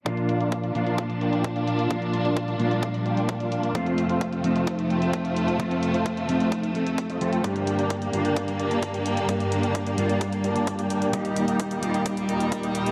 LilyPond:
<<
  \new Staff \with { instrumentName = "Supersaw synth" } { \time 4/4 \key bes \major \tempo 4 = 130 <bes d' f' d'' f''>8. <bes d' f' d'' f''>8 <bes d' f' d'' f''>8 <bes d' f' d'' f''>8 r16 <bes d' f' d'' g''>8. <bes d' f' d'' f''>16 <bes d' f' d'' f''>8 | <bes d' f' d'' f''>8. <bes d' f' d'' f''>8 <bes d' f' d'' f''>8 <bes d' f' d'' f''>8 r16 <bes d' f' d'' g''>8. <bes d' f' d'' f''>16 <bes d' f' d'' f''>8 | <a c' f' c'' f''>8. <a c' f' c'' f''>8 <a c' f' c'' f''>8 <a c' f' c'' f''>8 r16 <a c' f' c'' g''>8. <a c' f' c'' f''>16 <a c' f' c'' f''>8 | <a c' f' c'' f''>8. <a c' f' c'' f''>8 <a c' f' c'' f''>8 <a c' f' c'' f''>8 r4 <a c' f' c'' ees''>16 <a c' f' c'' g''>8 |
<bes d' g' d'' g''>8. <bes d' g' d'' g''>8 <bes d' g' d'' g''>8 <bes d' g' d'' g''>8 r16 <bes d' g' d'' a''>8. <bes d' g' d'' g''>16 <bes d' g' d'' g''>8 | <bes d' g' d'' g''>8. <bes d' g' d'' g''>8 <bes d' g' d'' g''>8 <bes d' g' d'' g''>8 r16 <bes d' g' d'' a''>8. <bes d' g' d'' g''>16 <bes d' g' d'' g''>8 | <bes ees' g' ees'' g''>8. <bes ees' g' ees'' g''>8 <bes ees' g' ees'' g''>8 <bes ees' g' ees'' g''>8 r16 <bes ees' g' ees'' bes''>8. <bes ees' g' ees'' g''>16 <bes ees' g' ees'' g''>8 | }
  \new Staff \with { instrumentName = "Clean electric guitar" } { \time 4/4 \key bes \major <bes, f bes d' f'>4. <bes, f bes d' f'>2~ <bes, f bes d' f'>8 | <bes, f bes d' f'>4. <bes, f bes d' f'>2~ <bes, f bes d' f'>8 | <f a c' f'>4. <f a c' ees'>2~ <f a c' ees'>8 | <f a c' f'>4. <f a c' ees'>4 <f a c' a'>4 <f a c' a'>8 |
<g, g bes d' g'>4. <g, g bes d' f'>2~ <g, g bes d' f'>8 | <g, g bes d' g'>4. <g, g bes d' f'>2~ <g, g bes d' f'>8 | <g bes ees' g'>4. <g bes ees' f'>2~ <g bes ees' f'>8 | }
  \new Staff \with { instrumentName = "String section" } { \clef bass \time 4/4 \key bes \major << { <bes, d'>1~ | <bes, d'>1 | <f, a>1~ | <f, a>1 |
<g, bes>1~ | <g, bes>1 | <ees, g>1 | } \\ { f1 | g1 | c1~ | c1 |
d1~ | d1 | bes,1 | } >> }
  \new DrumStaff \with { instrumentName = "Drums" } \drummode { \time 4/4 <hh bd>16 hh16 hh16 hh16 <hh bd>16 hh16 hh16 hh16 <hh bd>16 hh16 hh16 hh16 <hh bd>16 hh16 hh16 hh16 | <hh bd>16 hh16 hh16 hh16 <hh bd>16 hh16 hh16 hh16 <hh bd>16 hh16 hh16 hh16 <hh bd>16 hh16 hh16 hh16 | <hh bd>16 hh16 hh16 hh16 <hh bd>16 hh16 hh16 hh16 <hh bd>16 hh16 hh16 hh16 <hh bd>16 hh16 hh16 hh16 | <hh bd>16 hh16 hh16 hh16 <hh bd>16 hh16 hh16 hh16 <hh bd>16 hh16 hh16 hh16 <hh bd>16 hh16 hh16 hh16 |
<hh bd>16 hh16 hh16 hh16 <hh bd>16 hh16 hh16 hh16 <hh bd>16 hh16 hh16 hh16 <hh bd>16 hh16 hh16 hh16 | <hh bd>16 hh16 hh16 hh16 <hh bd>16 hh16 hh16 hh16 <hh bd>16 hh16 hh16 hh16 <hh bd>16 hh16 hh16 hh16 | <hh bd>16 hh16 hh16 hh16 <hh bd>16 hh16 hh16 hh16 <hh bd>16 hh16 hh16 hh16 <hh bd>16 hh16 hh16 hh16 | }
>>